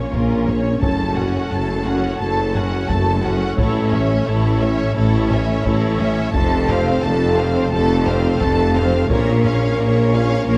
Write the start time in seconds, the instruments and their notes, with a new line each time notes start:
Already playing: viola section A#3, analog synth pad A#3 C#4 F4 C#5, violin section C#4 C#5, french horn section C#4 A#4
0.12 tuba A#1, double bass section A#1, analog synth bass A#2, cello section A#2, viola section C#4, violin section F4 A#4, taiko
0.47 analog synth bass A#3, viola section A#3, violin section C#4 C#5, taiko low-mid
0.81 tuba F#1, double bass section F#1, analog synth bass F#2, cello section F#2, viola section A3, analog synth pad A3 F#4, violin section A4 A5, french horn section A4, taiko
1.16 analog synth bass F#2, viola section C#4, violin section F#4 F#5, taiko low-mid
1.51 double bass section F#1, tuba F#1, analog synth bass F#2, cello section F#2, viola section A3, violin section A4 A5
1.85 analog synth bass F#2, viola section C#4, violin section F#4 F#5
2.20 double bass section F#1, tuba F#1, cello section F#2, analog synth bass F#2, viola section A3, violin section A4 A5
2.55 analog synth bass F#2, viola section C#4, violin section F#4 F#5, taiko low-mid
2.89 double bass section F#1, tuba F#1, analog synth bass F#2, cello section F#2, viola section A3, violin section A4 A5, taiko
3.23 analog synth bass F#3, viola section C#4, violin section F#4 F#5, taiko low-mid
3.58 double bass section A1, tuba A1, analog synth bass A2, cello section A2, french horn section C#4, analog synth pad C#4 E4 C#5, viola section E4, violin section A4 C#5, taiko
3.92 analog synth bass A2, viola section C#4, violin section C#5 E5, taiko low-mid
4.27 double bass section A1, tuba A1, analog synth bass A2, cello section A2, viola section E4, violin section A4 C#5
4.61 analog synth bass A2, viola section C#4, violin section C#5 E5
4.96 double bass section A1, tuba A1, analog synth bass A2, cello section A2, viola section E4, violin section A4 C#5
5.31 analog synth bass A2, viola section C#4, violin section C#5 E5, taiko low-mid
5.65 double bass section A1, tuba A1, analog synth bass A2, cello section A2, viola section E4, violin section A4 C#5, taiko
6.00 analog synth bass A3, viola section C#4, violin section C#5 E5, taiko low-mid
6.33 double bass section F1, tuba F1, analog synth bass F2, cello section F2, analog synth pad A3 C4 F4 F5, viola section A3, french horn section C4 A4, violin section A4 A5, taiko
6.68 analog synth bass F2, viola section C4, violin section C5 F5, taiko low-mid
7.03 double bass section F1, tuba F1, analog synth bass F2, cello section F2, viola section A3, violin section A4 A5
7.38 analog synth bass F2, viola section C4, violin section C5 F5
7.72 double bass section F1, tuba F1, analog synth bass F2, cello section F2, viola section A3, violin section A4 A5
8.06 analog synth bass F2, viola section C4, violin section C5 F5, taiko low-mid
8.41 double bass section F1, tuba F1, analog synth bass F2, cello section F2, viola section A3, violin section A4 A5, taiko
8.75 analog synth bass F3, viola section C4, violin section C5 F5, taiko low-mid
9.09 tuba A#1, double bass section A#1, analog synth bass A#2, cello section A#2, viola section A#3, analog synth pad A#3 C#4, french horn section C#4 A#4, violin section A#4 C#5, taiko
9.44 analog synth bass A#2, viola section C#4, violin section C#5 F5, taiko low-mid
9.79 double bass section A#1, tuba A#1, analog synth bass A#2, cello section A#2, viola section A#3, violin section A#4 C#5
10.13 analog synth bass A#2, viola section C#4, violin section C#5 F5
10.47 double bass section A#1, tuba A#1, cello section A#2, analog synth bass A#2, viola section A#3, violin section A#4 C#5